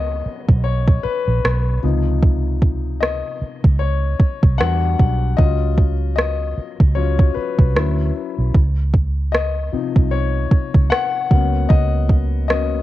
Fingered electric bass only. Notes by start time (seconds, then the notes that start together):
Already playing: C#2
0.26 muted fingered electric bass stroke
0.49 B1
1.05 muted fingered electric bass stroke
1.28 A#1
1.44 B1
1.84 C#2
3.42 muted fingered electric bass stroke
3.64 C#2
4.20 muted fingered electric bass stroke
4.43 C2
4.60 E2
5.00 B1
5.39 C#2
6.58 muted fingered electric bass stroke
6.80 C#2
7.36 muted fingered electric bass stroke
7.59 C2
7.76 D2
8.38 B1
8.54 C#2
9.73 muted fingered electric bass stroke
9.96 C2
10.52 muted fingered electric bass stroke
10.75 C#2
11.31 C#2
11.70 C#2